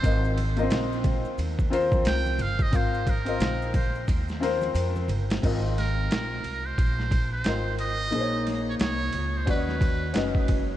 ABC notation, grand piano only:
X:1
M:4/4
L:1/16
Q:"Swing 16ths" 1/4=89
K:Ab
V:1 name="Grand piano"
[CFBe]2 z [B,CFBe]4- [B,CFBe] z2 [CFBc]4 z2 | [CFBf]2 z [CFBe]4- [CFBe] z2 [CFBc]4 z2 | [CFBe]4- [CFBe] z6 z [CFBe]3 z | [B,EAcd]4- [B,EAcd] z3 [^C^F=B=d^d]3 z [CFBd]3 z |]